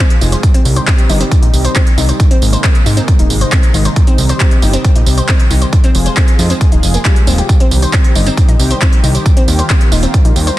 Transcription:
Already playing: C3 F3 G#3 F4 G#4
0.10 closed hi-hat
0.21 F1 D#4, open hi-hat, tambourine
0.32 C5, closed hi-hat, tambourine
0.43 C3 D#3 G3 D#4 G4, kick, closed hi-hat, tambourine
0.54 C4, closed hi-hat
0.65 C2, open hi-hat, tambourine
0.76 C5, closed hi-hat, tambourine
0.87 C4, kick, clap, closed hi-hat, tambourine
0.99 closed hi-hat
1.09 G1 D#4, open hi-hat, tambourine
1.21 C4, closed hi-hat, tambourine
1.31 kick, closed hi-hat, tambourine
1.43 A#1 D#4, closed hi-hat
1.54 C2, open hi-hat, tambourine
1.65 C5, closed hi-hat, tambourine
1.76 C4, kick, clap, closed hi-hat, tambourine
1.87 closed hi-hat
1.98 C2 D#4, open hi-hat, tambourine
2.09 C5, closed hi-hat, tambourine
2.20 D#3 G#3 A#3 D#4, kick, closed hi-hat, tambourine
2.31 C4, closed hi-hat
2.42 G#1, open hi-hat, tambourine
2.53 C5, closed hi-hat, tambourine
2.64 C4, kick, clap, closed hi-hat, tambourine
2.75 closed hi-hat
2.86 G#2 D#4, open hi-hat, tambourine
2.97 C4, closed hi-hat, tambourine
3.08 kick, closed hi-hat, tambourine
3.19 D#1 D#4, closed hi-hat
3.30 G#1, open hi-hat, tambourine
3.41 C5, closed hi-hat, tambourine
3.52 C4, kick, clap, closed hi-hat, tambourine
3.63 closed hi-hat
3.74 G#1 D#4, open hi-hat, tambourine
3.85 C5, closed hi-hat, tambourine
3.96 G3 G4, kick, closed hi-hat, tambourine
4.07 C4, closed hi-hat
4.18 C2, open hi-hat, tambourine
4.29 C5, closed hi-hat, tambourine
4.40 C4, kick, clap, closed hi-hat, tambourine
4.51 closed hi-hat
4.62 G1 D#4, open hi-hat, tambourine
4.73 C4, closed hi-hat, tambourine
4.85 kick, closed hi-hat, tambourine
4.96 A#1 D#4, closed hi-hat
5.06 C2, open hi-hat, tambourine
5.18 C5, closed hi-hat, tambourine
5.29 C4, kick, clap, closed hi-hat, tambourine
5.40 closed hi-hat
5.51 C2 D#4, open hi-hat, tambourine
5.62 C5, closed hi-hat, tambourine
5.72 F3 G#3 F4 G#4, kick, closed hi-hat, tambourine
5.84 C4, closed hi-hat
5.95 F1, open hi-hat, tambourine
6.06 C5, closed hi-hat, tambourine
6.17 C4, kick, clap, closed hi-hat, tambourine
6.28 closed hi-hat
6.39 F2 D#4, open hi-hat, tambourine
6.50 C4, closed hi-hat, tambourine
6.61 kick, closed hi-hat, tambourine
6.72 D#1 D#4, closed hi-hat
6.83 F1, open hi-hat, tambourine
6.94 A#3, closed hi-hat, tambourine
7.05 G3, kick, clap, closed hi-hat, tambourine
7.16 closed hi-hat
7.27 D#1 C4, open hi-hat, tambourine
7.38 G4, closed hi-hat, tambourine
7.49 D#3 G3 D#4 G4, kick, closed hi-hat, tambourine
7.60 C4, closed hi-hat
7.71 C2, open hi-hat, tambourine
7.82 C5, closed hi-hat, tambourine
7.93 C4, kick, clap, closed hi-hat, tambourine
8.04 closed hi-hat
8.15 G1 D#4, open hi-hat, tambourine
8.26 C4, closed hi-hat, tambourine
8.37 kick, closed hi-hat, tambourine
8.49 A#1 D#4, closed hi-hat
8.59 C2, open hi-hat, tambourine
8.71 C5, closed hi-hat, tambourine
8.82 C4, kick, clap, closed hi-hat, tambourine
8.93 closed hi-hat
9.03 C2 D#4, open hi-hat, tambourine
9.15 C5, closed hi-hat, tambourine
9.26 G3 A#3 F4, kick, closed hi-hat, tambourine
9.37 C4, closed hi-hat
9.48 D#2, open hi-hat, tambourine
9.59 C5, closed hi-hat, tambourine
9.70 C4, kick, clap, closed hi-hat, tambourine
9.81 closed hi-hat
9.92 D#1 D#4, open hi-hat, tambourine
10.03 C4, closed hi-hat, tambourine
10.14 kick, closed hi-hat, tambourine
10.25 A#1 D#4, closed hi-hat
10.36 D#2, open hi-hat, tambourine
10.47 C5, closed hi-hat, tambourine

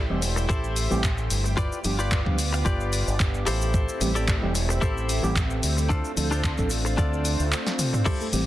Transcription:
Already playing: A3 E4 G4 C5
0.10 E1 E3 G3 A3 C4 G4
0.21 muted clean electric guitar stroke, open hi-hat, cabasa
0.36 muted clean electric guitar stroke, cabasa
0.49 A1 E4 G4 A4 C5, kick, cabasa
0.64 cabasa
0.76 open hi-hat, cabasa
0.90 A1 E3 G3 A3 C4 G4, cabasa
1.04 kick, clap, cabasa
1.18 cabasa
1.30 G1, open hi-hat, cabasa
1.44 muted clean electric guitar stroke, cabasa
1.57 B3 F4 G4 B4 D5, kick, cabasa
1.72 cabasa
1.84 G1 F3 G3 B3 D4 G4, open hi-hat, cabasa
1.99 F4 G4 B4 D5, cabasa
2.12 kick, clap, cabasa
2.25 D2 F3 G3 B3 D4 G4, kick
2.38 muted clean electric guitar stroke, open hi-hat, cabasa
2.53 muted clean electric guitar stroke, cabasa
2.65 G1 F4 G4 B4 D5, kick, cabasa
2.80 cabasa
2.92 open hi-hat, cabasa
3.07 G1, cabasa
3.20 kick, clap, cabasa
3.34 cabasa
3.46 A1 A3 C4 E4 G4 A4 C5, open hi-hat, cabasa
3.62 cabasa
3.74 kick, cabasa
3.89 cabasa
4.00 A1 E3 G3 A3 C4 G4, open hi-hat, cabasa
4.15 E4 G4 A4 D5, cabasa
4.28 kick, clap, cabasa
4.42 E1 E3 G3 A3 C4 G4
4.54 muted clean electric guitar stroke, open hi-hat, cabasa
4.69 muted clean electric guitar stroke, cabasa
4.81 A1 E4 G4 A4 C5, kick, cabasa
4.97 cabasa
5.09 open hi-hat, cabasa
5.23 A1 E3 G3 A3 C4 G4, cabasa
5.36 kick, clap, cabasa
5.50 cabasa
5.63 D2, open hi-hat, cabasa
5.77 muted clean electric guitar stroke, cabasa
5.89 D4 F4 A4 C5, kick, cabasa
6.04 cabasa
6.17 D2 F3 A3 C4 D4 A4, open hi-hat, cabasa
6.31 D4 F4 A4 C5, cabasa
6.44 kick, clap, cabasa
6.57 A1 F3 A3 C4 D4 A4, kick, cabasa
6.70 muted clean electric guitar stroke, open hi-hat, cabasa
6.85 muted clean electric guitar stroke, cabasa
6.97 D2 D4 F4 A4 D5, kick, cabasa
7.13 cabasa
7.25 open hi-hat, cabasa
7.40 D2, cabasa
7.52 clap, cabasa
7.67 snare, cabasa
7.79 open hi-hat, mid tom, cabasa
7.93 muted clean electric guitar stroke, mid tom, cabasa
8.05 G3 A3 E4 G4 A4 C5, kick, crash, cabasa
8.21 A3, cabasa
8.32 A1 E3 G3 A3 C4 G4, open hi-hat, cabasa

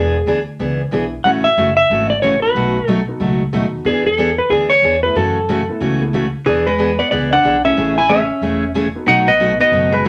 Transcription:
Already playing: E1 E3 B3 D4 G#4
0.26 D2 E3 B3 D4 G#4
0.59 C#2 E3 B3 D4 G#4
0.91 B1 E3 B3 D4 E4 G#4
1.24 A1 C#3 E3 A3 C#4 E4 F#4 A4 F#5
1.44 E5
1.57 F#1 C#3 E3 A3 C#4 F#4
1.77 E5
1.90 G#1 C#3 E3 A3 C#4 F#4
2.10 D5
2.22 A1 C#3 E3 A3 C#4 F#4 C#5
2.42 B3 D#4 F#4 A4 B4
2.55 B1 B2 F#3 A3 D#4 F#4
2.87 B1 B2 F#3 A3 D#4 F#4 A4
3.08 B3 D#4 F#4 A4
3.20 C#2 B2 F#3 A3 D#4 F#4
3.53 D#2 B2 F#3 A3 B3 D#4 F#4 A4
3.85 E2 E3 B3 D4 E4 G#4
4.06 A4
4.18 E3 B3 D4 G#4
4.38 B4
4.49 D2 E3 B3 D4 G#4
4.70 C#5
4.82 E2 E3 B3 D4 G#4
5.03 A3 B3 E4 G#4 B4
5.15 F#2 C#3 E3 A3 C#4 F#4 A4
5.49 C#3 E3 A3 C#4 F#4
5.69 A3 B3 E4 A4
5.80 C#2 C#3 E3 A3 C#4 F#4
6.00 A3 B3 E4 G#4
6.13 C#3 E3 A3 C#4 F#4
6.46 E2 E3 B3 D4 G#4
6.67 G#3 B4
6.78 E3 B3 D4 G#4
6.99 B3 D5
7.11 C#2 E3 B3 D4 G#4 D5
7.33 D4 F#5
7.43 B1 E3 B3 D4 G#4
7.64 A3 C#4 E4 G#4 E5
7.77 A1 C#3 E3 A3 C#4 G#4
7.98 E4 G#5
8.08 C#3 E3 A3 C#4 G#4 E5
8.41 E1 C#3 E3 A3 C#4 G#4
8.74 C#3 E3 A3 C#4 G#4
8.95 B3 D#4 F#4 A4
9.07 B1 B2 F#3 A3 D#4 F#4 F#5
9.28 B3 D#5
9.39 B2 F#3 A3 D#4 F#4
9.60 B3 D#4 F#4 A4 D#5
9.72 F#1 B2 F#3 A3 D#4 F#4
9.92 G#3 B4
10.05 B2 F#3 D#4

